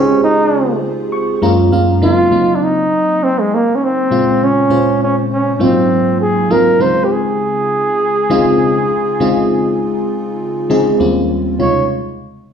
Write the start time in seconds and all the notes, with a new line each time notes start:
Already playing: C#3 G#3 C4 C#4 D#4 F4 G4 C5
0.00 G#4
0.24 D#4
1.12 C#6
1.42 F#2 G#3 A#3 C#4 F4 A#5
1.72 F#2 G#3 A#3 C#4 F4 F5
2.02 C#3 F#3 A#3 C4 D#4 F4
2.31 C#3 F#3 A#3 C4 D#4
2.55 D4
2.63 D#4
3.24 C4
3.39 G#3
3.54 A#3
3.75 C#4
3.84 C4
4.11 A#2 C#3 G#3 C4 F4
4.44 C#4
4.70 A#2 G#3 C#4 F4 C5
5.03 C#4
5.33 C#4
5.55 C#4
5.60 G#2 F#3 A#3 C4 D#4 F4
6.21 G#4
6.50 G#2 F#3 A#3 C4 D#4 F4 A#4
6.79 C#3 G#3 C4 D#4 F4 C5
7.04 G4
7.12 G#4
8.30 C#3 G#3 C4 D#4 F4
9.20 C#3 G#3 C4 D#4 F4
10.70 C#3 G#3 C4 D#4 G#4
10.99 D#2 G3 A#3 C4 C#4 F4
11.59 C3 C#3 G#3 D#4 F4 C#5